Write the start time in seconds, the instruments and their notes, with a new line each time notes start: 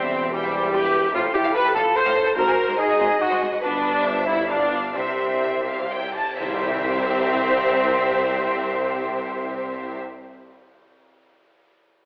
Already playing: tuba E1, double bass section E1, cello section E2, harp E3 G3 G4 C5 E5, french horn section G3, viola section C4, cor anglais C4, violin section G4, flute section C5
0.02 violin section E5
0.12 harp E4, violin section G5
0.22 violin section E5
0.30 french horn section E3, viola section G3, cor anglais G3, flute section G4, harp G4, violin section C5 G5
0.43 violin section E5
0.52 harp E5, violin section G5
0.64 violin section E5
0.71 french horn section E4, viola section G4, violin section B4 G5, flute section G5, harp C6
0.75 cor anglais G4
0.84 violin section E5
0.94 harp E5, violin section G5
1.05 violin section E5
1.13 tuba A1, double bass section A1, cello section A2, harp A2, french horn section C4, viola section F4, cor anglais F4, violin section A4 F5, flute section F5
1.24 cello section A2, violin section C5
1.34 harp F3, french horn section E4, cor anglais G4, viola section G4, flute section G5
1.44 cello section A2, violin section F5
1.54 french horn section G4, viola section B4, cor anglais B4, harp C5, flute section B5
1.65 cello section A2, violin section A4
1.75 double bass section A1, tuba A1, cello section A2, french horn section F4, harp F4, viola section A4, cor anglais A4, violin section F5, flute section A5
1.96 french horn section A4, viola section C5, cor anglais C5, harp F5, flute section C6
2.05 cello section A2, violin section F5
2.16 double bass section A1, tuba A1, cello section A2, harp F4, violin section C5
2.25 cello section A2, violin section A4
2.36 tuba G#1, double bass section G#1, harp G#2, cello section G#2, french horn section F#4, viola section A#4, cor anglais A#4, violin section C5, flute section A#5
2.47 cello section G#2, violin section G#4
2.58 harp F#3
2.68 cello section G#2, violin section C5
2.78 french horn section D#4, cor anglais G#4, viola section G#4, harp C5, violin section D#5, flute section G#5
2.89 cello section G#2, violin section F#4
2.99 tuba G#1, double bass section G#1, cello section G#2, harp F#4, violin section C5
3.20 french horn section D#4, cor anglais F#4, viola section F#4, harp D#5, flute section F#5
3.31 cello section G#2, violin section C5
3.41 double bass section G#1, tuba G#1, cello section G#2, harp F#4, violin section G#4
3.52 cello section G#2, violin section F#4
3.62 double bass section G1, tuba G1, cello section G2, harp G2, french horn section B3, cor anglais D4, viola section D4, violin section B4, flute section D5
3.83 harp G4 B4
4.03 harp G2, violin section C5 E5
4.26 french horn section C4, cor anglais E4, harp E4 C5, viola section E4, flute section E5
4.48 harp G2, french horn section B3, viola section D4, cor anglais D4, flute section D5, violin section D5 F5
4.72 harp F4 B4
4.94 double bass section C2, tuba C2, cello section C3, harp C3, french horn section G3, viola section C4, cor anglais C4, flute section C5, violin section E5
5.19 harp G3
5.43 harp C5, violin section E5
5.66 harp G4, violin section F5
5.91 harp E5, violin section G5
6.15 harp G4, violin section A5
6.38 double bass section C2, tuba C2, cello section C3, harp C3, french horn section C4, viola section C4, cor anglais C4, violin section G4 C5 E5, flute section C5, tam-tam
6.47 harp G3
6.54 harp C4
6.61 harp E4
6.68 harp C5
6.75 harp E5